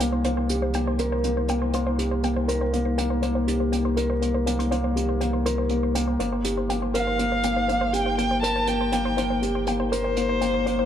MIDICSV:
0, 0, Header, 1, 6, 480
1, 0, Start_track
1, 0, Tempo, 495868
1, 241, Time_signature, 4, 2, 24, 8
1, 10507, End_track
2, 0, Start_track
2, 0, Title_t, "Violin"
2, 0, Program_c, 0, 40
2, 6722, Note_on_c, 0, 77, 78
2, 7676, Note_on_c, 0, 79, 78
2, 7690, Note_off_c, 0, 77, 0
2, 7908, Note_off_c, 0, 79, 0
2, 7914, Note_on_c, 0, 79, 87
2, 8141, Note_off_c, 0, 79, 0
2, 8154, Note_on_c, 0, 81, 88
2, 8393, Note_on_c, 0, 79, 80
2, 8408, Note_off_c, 0, 81, 0
2, 9357, Note_off_c, 0, 79, 0
2, 9598, Note_on_c, 0, 72, 81
2, 10507, Note_off_c, 0, 72, 0
2, 10507, End_track
3, 0, Start_track
3, 0, Title_t, "Synth arpeggio sound"
3, 0, Program_c, 1, 84
3, 121, Note_on_c, 1, 72, 65
3, 157, Note_off_c, 1, 72, 0
3, 240, Note_on_c, 1, 72, 74
3, 331, Note_off_c, 1, 72, 0
3, 360, Note_on_c, 1, 72, 67
3, 397, Note_off_c, 1, 72, 0
3, 603, Note_on_c, 1, 72, 64
3, 638, Note_off_c, 1, 72, 0
3, 725, Note_on_c, 1, 79, 69
3, 783, Note_off_c, 1, 79, 0
3, 846, Note_on_c, 1, 72, 68
3, 880, Note_off_c, 1, 72, 0
3, 967, Note_on_c, 1, 72, 65
3, 1055, Note_off_c, 1, 72, 0
3, 1088, Note_on_c, 1, 72, 72
3, 1120, Note_off_c, 1, 72, 0
3, 1327, Note_on_c, 1, 72, 65
3, 1360, Note_off_c, 1, 72, 0
3, 1448, Note_on_c, 1, 79, 70
3, 1505, Note_off_c, 1, 79, 0
3, 1566, Note_on_c, 1, 72, 58
3, 1600, Note_off_c, 1, 72, 0
3, 1689, Note_on_c, 1, 72, 78
3, 1776, Note_off_c, 1, 72, 0
3, 1807, Note_on_c, 1, 72, 68
3, 1840, Note_off_c, 1, 72, 0
3, 2046, Note_on_c, 1, 72, 64
3, 2080, Note_off_c, 1, 72, 0
3, 2170, Note_on_c, 1, 79, 79
3, 2226, Note_off_c, 1, 79, 0
3, 2288, Note_on_c, 1, 72, 70
3, 2321, Note_off_c, 1, 72, 0
3, 2407, Note_on_c, 1, 72, 68
3, 2494, Note_off_c, 1, 72, 0
3, 2527, Note_on_c, 1, 72, 61
3, 2560, Note_off_c, 1, 72, 0
3, 2762, Note_on_c, 1, 72, 74
3, 2797, Note_off_c, 1, 72, 0
3, 2885, Note_on_c, 1, 79, 68
3, 2943, Note_off_c, 1, 79, 0
3, 3004, Note_on_c, 1, 72, 68
3, 3038, Note_off_c, 1, 72, 0
3, 3125, Note_on_c, 1, 72, 72
3, 3213, Note_off_c, 1, 72, 0
3, 3245, Note_on_c, 1, 72, 68
3, 3279, Note_off_c, 1, 72, 0
3, 3487, Note_on_c, 1, 72, 64
3, 3520, Note_off_c, 1, 72, 0
3, 3605, Note_on_c, 1, 79, 78
3, 3663, Note_off_c, 1, 79, 0
3, 3728, Note_on_c, 1, 72, 71
3, 3761, Note_off_c, 1, 72, 0
3, 3848, Note_on_c, 1, 72, 70
3, 3935, Note_off_c, 1, 72, 0
3, 3966, Note_on_c, 1, 72, 69
3, 4000, Note_off_c, 1, 72, 0
3, 4205, Note_on_c, 1, 72, 71
3, 4239, Note_off_c, 1, 72, 0
3, 4327, Note_on_c, 1, 79, 61
3, 4384, Note_off_c, 1, 79, 0
3, 4444, Note_on_c, 1, 72, 67
3, 4479, Note_off_c, 1, 72, 0
3, 4564, Note_on_c, 1, 72, 77
3, 4653, Note_off_c, 1, 72, 0
3, 4686, Note_on_c, 1, 72, 66
3, 4720, Note_off_c, 1, 72, 0
3, 4925, Note_on_c, 1, 72, 67
3, 4959, Note_off_c, 1, 72, 0
3, 5040, Note_on_c, 1, 79, 69
3, 5101, Note_off_c, 1, 79, 0
3, 5162, Note_on_c, 1, 72, 64
3, 5198, Note_off_c, 1, 72, 0
3, 5283, Note_on_c, 1, 72, 69
3, 5373, Note_off_c, 1, 72, 0
3, 5403, Note_on_c, 1, 72, 64
3, 5438, Note_off_c, 1, 72, 0
3, 5645, Note_on_c, 1, 72, 68
3, 5679, Note_off_c, 1, 72, 0
3, 5762, Note_on_c, 1, 79, 69
3, 5822, Note_off_c, 1, 79, 0
3, 5881, Note_on_c, 1, 72, 66
3, 5917, Note_off_c, 1, 72, 0
3, 6002, Note_on_c, 1, 72, 75
3, 6092, Note_off_c, 1, 72, 0
3, 6123, Note_on_c, 1, 72, 64
3, 6158, Note_off_c, 1, 72, 0
3, 6365, Note_on_c, 1, 72, 70
3, 6399, Note_off_c, 1, 72, 0
3, 6484, Note_on_c, 1, 79, 74
3, 6543, Note_off_c, 1, 79, 0
3, 6605, Note_on_c, 1, 72, 72
3, 6639, Note_off_c, 1, 72, 0
3, 6724, Note_on_c, 1, 72, 68
3, 6813, Note_off_c, 1, 72, 0
3, 6846, Note_on_c, 1, 72, 75
3, 6879, Note_off_c, 1, 72, 0
3, 7085, Note_on_c, 1, 72, 67
3, 7119, Note_off_c, 1, 72, 0
3, 7205, Note_on_c, 1, 79, 72
3, 7263, Note_off_c, 1, 79, 0
3, 7322, Note_on_c, 1, 72, 60
3, 7358, Note_off_c, 1, 72, 0
3, 7444, Note_on_c, 1, 72, 74
3, 7533, Note_off_c, 1, 72, 0
3, 7561, Note_on_c, 1, 72, 74
3, 7597, Note_off_c, 1, 72, 0
3, 7802, Note_on_c, 1, 72, 67
3, 7838, Note_off_c, 1, 72, 0
3, 7924, Note_on_c, 1, 79, 78
3, 7983, Note_off_c, 1, 79, 0
3, 8044, Note_on_c, 1, 72, 67
3, 8079, Note_off_c, 1, 72, 0
3, 8164, Note_on_c, 1, 72, 67
3, 8253, Note_off_c, 1, 72, 0
3, 8283, Note_on_c, 1, 72, 69
3, 8318, Note_off_c, 1, 72, 0
3, 8525, Note_on_c, 1, 72, 71
3, 8559, Note_off_c, 1, 72, 0
3, 8644, Note_on_c, 1, 79, 69
3, 8703, Note_off_c, 1, 79, 0
3, 8764, Note_on_c, 1, 72, 68
3, 8799, Note_off_c, 1, 72, 0
3, 8887, Note_on_c, 1, 72, 68
3, 8974, Note_off_c, 1, 72, 0
3, 9005, Note_on_c, 1, 72, 65
3, 9039, Note_off_c, 1, 72, 0
3, 9246, Note_on_c, 1, 72, 61
3, 9280, Note_off_c, 1, 72, 0
3, 9367, Note_on_c, 1, 79, 75
3, 9424, Note_off_c, 1, 79, 0
3, 9484, Note_on_c, 1, 72, 67
3, 9519, Note_off_c, 1, 72, 0
3, 9604, Note_on_c, 1, 72, 70
3, 9693, Note_off_c, 1, 72, 0
3, 9722, Note_on_c, 1, 72, 66
3, 9758, Note_off_c, 1, 72, 0
3, 9964, Note_on_c, 1, 72, 69
3, 9998, Note_off_c, 1, 72, 0
3, 10082, Note_on_c, 1, 79, 69
3, 10142, Note_off_c, 1, 79, 0
3, 10204, Note_on_c, 1, 72, 66
3, 10239, Note_off_c, 1, 72, 0
3, 10324, Note_on_c, 1, 72, 76
3, 10413, Note_off_c, 1, 72, 0
3, 10444, Note_on_c, 1, 72, 75
3, 10479, Note_off_c, 1, 72, 0
3, 10507, End_track
4, 0, Start_track
4, 0, Title_t, "Felt piano"
4, 0, Program_c, 2, 0
4, 0, Control_c, 2, 64, 127
4, 0, Note_on_c, 2, 58, 59
4, 0, Note_on_c, 2, 67, 59
4, 0, Note_on_c, 2, 70, 72
4, 2, Note_off_c, 2, 58, 0
4, 2, Note_on_c, 2, 58, 80
4, 227, Note_off_c, 2, 58, 0
4, 242, Note_on_c, 2, 58, 77
4, 469, Note_off_c, 2, 58, 0
4, 482, Note_off_c, 2, 67, 0
4, 482, Note_on_c, 2, 67, 64
4, 709, Note_off_c, 2, 67, 0
4, 722, Note_on_c, 2, 58, 62
4, 949, Note_off_c, 2, 58, 0
4, 962, Note_off_c, 2, 70, 0
4, 962, Note_on_c, 2, 70, 72
4, 1098, Note_off_c, 2, 70, 0
4, 1204, Note_on_c, 2, 58, 64
4, 1426, Note_off_c, 2, 58, 0
4, 1440, Note_on_c, 2, 58, 74
4, 1668, Note_off_c, 2, 58, 0
4, 1683, Note_on_c, 2, 58, 80
4, 1910, Note_off_c, 2, 58, 0
4, 1921, Note_on_c, 2, 67, 62
4, 2149, Note_off_c, 2, 67, 0
4, 2162, Note_on_c, 2, 58, 62
4, 2389, Note_off_c, 2, 58, 0
4, 2400, Note_on_c, 2, 70, 83
4, 2537, Note_off_c, 2, 70, 0
4, 2644, Note_on_c, 2, 58, 65
4, 2868, Note_off_c, 2, 58, 0
4, 2883, Note_on_c, 2, 58, 82
4, 3106, Note_off_c, 2, 58, 0
4, 3121, Note_on_c, 2, 58, 85
4, 3349, Note_off_c, 2, 58, 0
4, 3362, Note_on_c, 2, 67, 58
4, 3589, Note_off_c, 2, 67, 0
4, 3600, Note_on_c, 2, 58, 59
4, 3828, Note_off_c, 2, 58, 0
4, 3839, Note_on_c, 2, 70, 80
4, 3977, Note_off_c, 2, 70, 0
4, 4079, Note_on_c, 2, 58, 65
4, 4305, Note_off_c, 2, 58, 0
4, 4320, Note_on_c, 2, 58, 82
4, 4545, Note_off_c, 2, 58, 0
4, 4560, Note_on_c, 2, 58, 85
4, 4788, Note_off_c, 2, 58, 0
4, 4799, Note_on_c, 2, 67, 58
4, 5028, Note_off_c, 2, 67, 0
4, 5040, Note_on_c, 2, 58, 64
4, 5269, Note_off_c, 2, 58, 0
4, 5281, Note_on_c, 2, 70, 76
4, 5418, Note_off_c, 2, 70, 0
4, 5520, Note_on_c, 2, 58, 57
4, 5744, Note_off_c, 2, 58, 0
4, 5759, Note_on_c, 2, 58, 82
4, 5983, Note_off_c, 2, 58, 0
4, 5997, Note_on_c, 2, 58, 77
4, 6015, Control_c, 2, 64, 0
4, 6174, Control_c, 2, 64, 127
4, 6227, Note_off_c, 2, 58, 0
4, 6240, Note_on_c, 2, 67, 62
4, 6468, Note_off_c, 2, 67, 0
4, 6478, Note_on_c, 2, 58, 63
4, 6707, Note_off_c, 2, 58, 0
4, 6719, Note_on_c, 2, 70, 76
4, 6857, Note_off_c, 2, 70, 0
4, 6960, Note_on_c, 2, 58, 64
4, 7184, Note_off_c, 2, 58, 0
4, 7198, Note_on_c, 2, 58, 73
4, 7423, Note_off_c, 2, 58, 0
4, 7437, Note_on_c, 2, 58, 77
4, 7667, Note_off_c, 2, 58, 0
4, 7677, Note_on_c, 2, 67, 62
4, 7907, Note_off_c, 2, 67, 0
4, 7917, Note_on_c, 2, 58, 65
4, 8147, Note_off_c, 2, 58, 0
4, 8156, Note_on_c, 2, 70, 85
4, 8295, Note_off_c, 2, 70, 0
4, 8401, Note_on_c, 2, 58, 65
4, 8623, Note_off_c, 2, 58, 0
4, 8637, Note_on_c, 2, 58, 77
4, 8863, Note_off_c, 2, 58, 0
4, 8878, Note_on_c, 2, 58, 82
4, 9107, Note_off_c, 2, 58, 0
4, 9120, Note_on_c, 2, 67, 58
4, 9348, Note_off_c, 2, 67, 0
4, 9360, Note_on_c, 2, 58, 66
4, 9588, Note_off_c, 2, 58, 0
4, 9599, Note_on_c, 2, 70, 81
4, 9737, Note_off_c, 2, 70, 0
4, 9842, Note_on_c, 2, 58, 68
4, 10062, Note_off_c, 2, 58, 0
4, 10077, Note_on_c, 2, 58, 82
4, 10304, Note_off_c, 2, 58, 0
4, 10319, Note_on_c, 2, 58, 89
4, 10507, Note_off_c, 2, 58, 0
4, 10507, End_track
5, 0, Start_track
5, 0, Title_t, "Sub bass"
5, 0, Program_c, 3, 38
5, 0, Note_on_c, 3, 36, 80
5, 5977, Note_off_c, 3, 36, 0
5, 6000, Note_on_c, 3, 31, 78
5, 10507, Note_off_c, 3, 31, 0
5, 10507, End_track
6, 0, Start_track
6, 0, Title_t, "Drums"
6, 1, Note_on_c, 9, 42, 64
6, 98, Note_off_c, 9, 42, 0
6, 234, Note_on_c, 9, 42, 44
6, 331, Note_off_c, 9, 42, 0
6, 475, Note_on_c, 9, 42, 54
6, 572, Note_off_c, 9, 42, 0
6, 711, Note_on_c, 9, 42, 45
6, 808, Note_off_c, 9, 42, 0
6, 956, Note_on_c, 9, 42, 54
6, 1053, Note_off_c, 9, 42, 0
6, 1198, Note_on_c, 9, 42, 49
6, 1294, Note_off_c, 9, 42, 0
6, 1435, Note_on_c, 9, 42, 54
6, 1532, Note_off_c, 9, 42, 0
6, 1678, Note_on_c, 9, 42, 43
6, 1774, Note_off_c, 9, 42, 0
6, 1924, Note_on_c, 9, 42, 58
6, 2021, Note_off_c, 9, 42, 0
6, 2162, Note_on_c, 9, 42, 40
6, 2259, Note_off_c, 9, 42, 0
6, 2406, Note_on_c, 9, 42, 61
6, 2502, Note_off_c, 9, 42, 0
6, 2646, Note_on_c, 9, 42, 48
6, 2743, Note_off_c, 9, 42, 0
6, 2885, Note_on_c, 9, 42, 59
6, 2981, Note_off_c, 9, 42, 0
6, 3121, Note_on_c, 9, 42, 46
6, 3218, Note_off_c, 9, 42, 0
6, 3366, Note_on_c, 9, 42, 57
6, 3462, Note_off_c, 9, 42, 0
6, 3605, Note_on_c, 9, 42, 50
6, 3702, Note_off_c, 9, 42, 0
6, 3842, Note_on_c, 9, 42, 57
6, 3939, Note_off_c, 9, 42, 0
6, 4086, Note_on_c, 9, 42, 40
6, 4182, Note_off_c, 9, 42, 0
6, 4325, Note_on_c, 9, 42, 61
6, 4421, Note_off_c, 9, 42, 0
6, 4448, Note_on_c, 9, 42, 36
6, 4545, Note_off_c, 9, 42, 0
6, 4568, Note_on_c, 9, 42, 50
6, 4664, Note_off_c, 9, 42, 0
6, 4808, Note_on_c, 9, 42, 53
6, 4905, Note_off_c, 9, 42, 0
6, 5041, Note_on_c, 9, 42, 50
6, 5138, Note_off_c, 9, 42, 0
6, 5284, Note_on_c, 9, 42, 62
6, 5381, Note_off_c, 9, 42, 0
6, 5510, Note_on_c, 9, 42, 39
6, 5607, Note_off_c, 9, 42, 0
6, 5761, Note_on_c, 9, 42, 67
6, 5858, Note_off_c, 9, 42, 0
6, 6000, Note_on_c, 9, 42, 41
6, 6097, Note_off_c, 9, 42, 0
6, 6236, Note_on_c, 9, 42, 60
6, 6333, Note_off_c, 9, 42, 0
6, 6481, Note_on_c, 9, 42, 48
6, 6578, Note_off_c, 9, 42, 0
6, 6724, Note_on_c, 9, 42, 58
6, 6821, Note_off_c, 9, 42, 0
6, 6960, Note_on_c, 9, 42, 45
6, 7057, Note_off_c, 9, 42, 0
6, 7195, Note_on_c, 9, 42, 58
6, 7292, Note_off_c, 9, 42, 0
6, 7443, Note_on_c, 9, 42, 44
6, 7540, Note_off_c, 9, 42, 0
6, 7680, Note_on_c, 9, 42, 62
6, 7777, Note_off_c, 9, 42, 0
6, 7921, Note_on_c, 9, 42, 46
6, 8017, Note_off_c, 9, 42, 0
6, 8166, Note_on_c, 9, 42, 61
6, 8263, Note_off_c, 9, 42, 0
6, 8394, Note_on_c, 9, 42, 47
6, 8491, Note_off_c, 9, 42, 0
6, 8636, Note_on_c, 9, 42, 59
6, 8733, Note_off_c, 9, 42, 0
6, 8883, Note_on_c, 9, 42, 46
6, 8980, Note_off_c, 9, 42, 0
6, 9122, Note_on_c, 9, 42, 49
6, 9219, Note_off_c, 9, 42, 0
6, 9358, Note_on_c, 9, 42, 43
6, 9455, Note_off_c, 9, 42, 0
6, 9606, Note_on_c, 9, 42, 55
6, 9703, Note_off_c, 9, 42, 0
6, 9839, Note_on_c, 9, 42, 43
6, 9935, Note_off_c, 9, 42, 0
6, 10080, Note_on_c, 9, 42, 53
6, 10177, Note_off_c, 9, 42, 0
6, 10323, Note_on_c, 9, 42, 44
6, 10420, Note_off_c, 9, 42, 0
6, 10507, End_track
0, 0, End_of_file